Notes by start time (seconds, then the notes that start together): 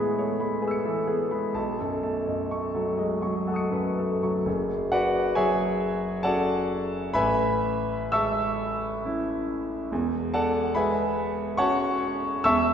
Already playing: A2 E3 G#3 B3 G#4 C#5 G#5 B5
0.18 A3 C#5
0.40 G#3 B5
0.62 B3 G#4 G#5 B5
0.68 E6 C#7
0.84 E3 A4
1.07 B3 G#4
1.31 G#3 B5
1.54 B1 A5
1.80 F#2 A4
2.03 A3 A5
2.28 F#2 D#5
2.51 A3 C#6
2.74 F#3 A4
2.98 G#3 D#5
3.22 F#3 C#6
3.47 A3 A4 F#5 A5
3.54 D#6 C#7
3.71 F#2 B4
3.98 A3 A4
4.23 F#3 C#6
4.45 F#1 F#2
4.92 F#4 B4 D5 F#5
5.35 F#3 G#4 C#5 E5 G#5
6.23 C#4 F#4 A4 D5 F#5 A5
7.14 A1 A2 B4 E5 G#5 B5
8.12 G#3 E5 A5 C#6 E6
9.05 C#4 E4
9.91 E1 E2
10.34 A4 D5 F#5 A5
10.75 G#3 B4 E5 G#5 B5
11.57 C#4 F#4 C#5 F#5 A5 C#6
12.44 E1 E2 E5 A5 C#6 E6